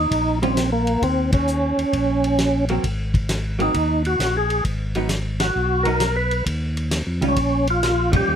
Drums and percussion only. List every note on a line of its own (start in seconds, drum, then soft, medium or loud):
0.11 kick soft
0.11 ride medium
0.43 ride soft
0.57 snare medium
0.57 hi-hat pedal medium
0.57 ride medium
0.87 ride soft
1.02 kick soft
1.02 ride medium
1.32 kick medium
1.32 ride medium
1.47 hi-hat pedal medium
1.79 ride soft
1.93 kick soft
1.93 ride medium
2.24 ride soft
2.38 snare medium
2.38 hi-hat pedal soft
2.38 ride medium
2.68 ride soft
2.84 kick soft
2.84 ride medium
3.14 kick medium
3.14 ride soft
3.29 snare medium
3.29 hi-hat pedal medium
3.29 ride medium
3.60 ride soft
3.74 kick soft
3.74 ride medium
4.05 ride soft
4.20 snare medium
4.20 hi-hat pedal soft
4.20 ride medium
4.50 ride soft
4.65 kick soft
4.65 ride medium
4.95 ride soft
5.09 snare medium
5.09 hi-hat pedal medium
5.09 ride medium
5.40 snare medium
5.40 ride medium
5.85 ride soft
6.00 snare medium
6.00 hi-hat pedal medium
6.00 ride medium
6.31 ride soft
6.46 kick soft
6.46 ride medium
6.77 ride soft
6.91 snare medium
6.91 hi-hat pedal medium
6.91 ride medium
7.22 ride soft
7.36 kick soft
7.36 ride medium
7.67 ride soft
7.83 snare medium
7.83 hi-hat pedal soft
7.83 ride medium
8.13 kick medium
8.13 ride medium